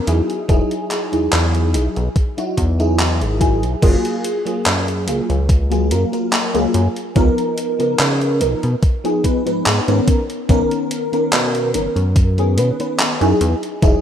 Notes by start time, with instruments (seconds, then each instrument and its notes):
0.07 analog synth bass E2, fm electric piano F#3 D#4 E4 G#4, closed hi-hat
0.30 closed hi-hat
0.48 analog synth bass E1, fm electric piano F#3 D#4 E4 G#4, kick, closed hi-hat
0.71 closed hi-hat
0.91 clap, closed hi-hat
1.12 analog synth bass E2, fm electric piano F#3 D#4 E4 G#4, closed hi-hat
1.32 analog synth bass E2, clap, closed hi-hat
1.55 closed hi-hat
1.73 analog synth bass B1, fm electric piano F#3 D#4 E4 G#4, closed hi-hat
1.96 analog synth bass B1, closed hi-hat
2.16 kick, closed hi-hat
2.37 fm electric piano F#3 D#4 E4 F#4, closed hi-hat
2.57 analog synth bass E2, kick, closed hi-hat
2.79 fm electric piano F#3 D#4 E4 G#4, closed hi-hat
2.99 clap, closed hi-hat
3.21 analog synth bass G#1, closed hi-hat
3.40 fm electric piano F#3 D#4 E4 G#4, kick, closed hi-hat
3.63 analog synth bass B1, closed hi-hat
3.82 analog synth bass F#1, fm electric piano F#3 A#3 F4 G#4, kick, closed hi-hat, crash
4.05 closed hi-hat
4.24 closed hi-hat
4.45 fm electric piano F#3 A#3 F4 G#4, closed hi-hat
4.66 analog synth bass F#2, clap, closed hi-hat
4.88 closed hi-hat
5.07 analog synth bass C#2, fm electric piano F#3 A#3 F4 G#4, closed hi-hat
5.30 analog synth bass C#2, closed hi-hat
5.49 kick, closed hi-hat
5.70 fm electric piano F#3 A#3 F4 G#4, closed hi-hat
5.90 analog synth bass F#2, fm electric piano F#3 A#3 F4 A#4, closed hi-hat
6.12 fm electric piano F#3 A#3 F4 A#4, closed hi-hat
6.33 clap, closed hi-hat
6.54 analog synth bass C#2, fm electric piano F#3 A#3 F4 G#4, closed hi-hat
6.74 analog synth bass F#2, closed hi-hat
6.96 closed hi-hat
7.15 analog synth bass C#2, fm electric piano F3 B3 D#4 A#4, kick, closed hi-hat
7.38 closed hi-hat
7.58 closed hi-hat
7.79 analog synth bass C#3, fm electric piano F3 B3 D#4 A#4, closed hi-hat
7.99 analog synth bass C#3, clap, closed hi-hat
8.21 closed hi-hat
8.40 analog synth bass B1, fm electric piano F3 B3 D#4 A#4, closed hi-hat
8.63 analog synth bass B2, closed hi-hat
8.83 kick, closed hi-hat
9.04 fm electric piano F3 B3 D#4 G#4, closed hi-hat
9.23 fm electric piano F3 B3 D#4 B4, kick, closed hi-hat
9.46 analog synth bass G#2, fm electric piano F3 B3 D#4 B4, closed hi-hat
9.66 analog synth bass G#2, clap, closed hi-hat
9.87 analog synth bass G#2, fm electric piano D#3 B3 C#4 A#4, closed hi-hat
10.08 kick, closed hi-hat
10.30 closed hi-hat
10.49 analog synth bass B1, fm electric piano D#3 B3 C#4 A#4, kick, closed hi-hat
10.71 closed hi-hat
10.91 closed hi-hat
11.12 fm electric piano D#3 B3 C#4 A#4, closed hi-hat
11.33 analog synth bass B2, clap, closed hi-hat
11.55 closed hi-hat
11.74 analog synth bass F#1, fm electric piano D#3 B3 C#4 A#4, closed hi-hat
11.96 analog synth bass F#2, closed hi-hat
12.16 kick, closed hi-hat
12.38 fm electric piano D#3 B3 C#4 G#4, closed hi-hat
12.57 analog synth bass B2, fm electric piano D#3 B3 C#4 B4, closed hi-hat
12.79 fm electric piano D#3 B3 C#4 B4, closed hi-hat
12.99 clap, closed hi-hat
13.20 analog synth bass F#2, fm electric piano F#3 D#4 E4 G#4, closed hi-hat
13.41 analog synth bass E2, closed hi-hat
13.63 closed hi-hat
13.82 analog synth bass E1, fm electric piano F#3 D#4 E4 G#4, kick, closed hi-hat